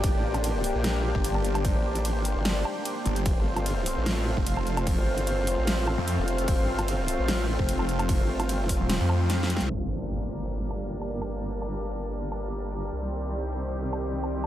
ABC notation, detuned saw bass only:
X:1
M:4/4
L:1/16
Q:1/4=149
K:Gm
V:1 name="Detuned saw bass" clef=bass
z8 z3 G,,,4- G,,,- | G,,, z12 z G,,,2 | z8 z3 F,,,4- F,,,- | F,,, z8 z2 F,,2 z3 |
z8 z3 F,,,4- F,,,- | F,,, z6 E,,,2 F,,6 C,, | z16 | z16 |
z16 |]